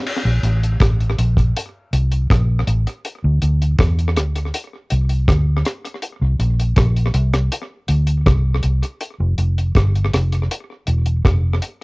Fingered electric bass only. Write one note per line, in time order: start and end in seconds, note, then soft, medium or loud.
0.25 0.42 A#1 loud
0.43 0.77 A1 medium
0.80 1.14 A1 medium
1.19 1.52 A#1 medium
1.93 2.26 C2 medium
2.30 2.64 A#1 medium
2.67 2.85 A1 medium
3.24 3.40 D2 loud
3.42 3.76 D2 medium
3.79 4.17 E2 loud
4.17 4.50 D2 medium
4.92 5.25 C2 medium
5.28 5.62 D2 loud
6.21 6.38 C2 medium
6.39 6.73 A#1 medium
6.77 7.11 A#1 loud
7.14 7.48 C2 medium
7.89 8.23 D2 medium
8.27 8.60 C2 loud
8.64 8.81 C2 medium
9.20 9.37 F1 loud
9.38 9.72 F1 medium
9.76 10.09 G1 medium
10.14 10.47 F1 medium
10.88 11.21 E1 medium
11.25 11.59 F1 loud